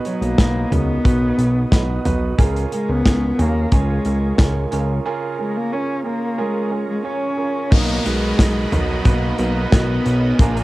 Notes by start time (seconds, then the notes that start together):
Already playing: B2 B3 D#4 F#4 G#4 A#4 B4 D#5 F#5 D#6
0.05 F#3 B3 D#4 F#4 C#5, closed hi-hat
0.21 B1 A#3, closed hi-hat
0.38 B1 B3 D#4 F#4 B4, kick, snare, closed hi-hat
0.71 C#2 B3 D#4 F#4 A#4, closed hi-hat, floor tom
1.04 B1 B3 D#4 F#4 B4, kick, closed hi-hat
1.37 B1 B3 D#4 F#4 B4, closed hi-hat
1.71 B1 B3 D#4 F#4 B4, kick, snare, closed hi-hat
2.05 B1 B3 D#4 F#4 B4, closed hi-hat, floor tom
2.38 C#2 C#3 C#4 F4 G#4 A#4 F5 C#6, kick, closed hi-hat
2.56 closed hi-hat
2.72 G#3 C#4 F4 G#4 A#4, closed hi-hat
2.89 C#2 B3
3.05 C#2 C#4 F4 G#4 A#4, kick, snare, closed hi-hat
3.38 D#2 A#3 C#4 F4 G#4 C#5, closed hi-hat, floor tom
3.72 C#2 G#3 C#4 F4 G#4 C#5, kick, closed hi-hat
4.05 C#2 C#4 F4 G#4 A#4, closed hi-hat
4.38 C#2 C#4 F4 G#4 A#4, kick, snare, closed hi-hat
4.71 C#2 C#4 F4 G#4 A#4, closed hi-hat
5.05 C#3 C#4 F4 G#4 A#4 A#5
5.38 G#3 C#4 F4 G#4 A#4
5.56 A#3
5.72 C#4 F4 G#4 A#4
6.04 A#3 C#4 F4 G#4 A#4
6.38 G#3 C#4 F4 G#4 A#4
6.71 C#4 F4 G#4 A#4
6.89 G#3
7.04 C#4 F4 G#4 C#5
7.37 C#4 F4 G#4 A#4
7.70 B1 B2 D#3 F#3 A#3 B3 D#4 F#4 A#4 D#5 B5, kick, crash, downlifter
7.74 D#5 F#5 D#6
8.04 B1 F#3 G#3 B3 D#4 F#4 A#4 B4, closed hi-hat
8.38 B1 B2 D#3 F#3 B3 D#4 F#4 A#4, kick, snare, closed hi-hat
8.71 B1 F#3 B3 D#4 F#4 A#4, closed hi-hat, floor tom
9.04 B1 F#3 A#3 B3 D#4 F#4 A#4 B4, kick, closed hi-hat
9.37 B1 F#3 B3 D#4 F#4 A#4, closed hi-hat
9.71 B1 B2 D#3 F#3 B3 D#4 F#4 A#4, kick, snare, closed hi-hat
10.04 B1 F#3 B3 D#4 F#4 A#4 C#5, closed hi-hat
10.38 A#1 A#2 F3 G#3 A#3 D4 F4 G#4 A#4 G#5 D6, kick, closed hi-hat
10.57 closed hi-hat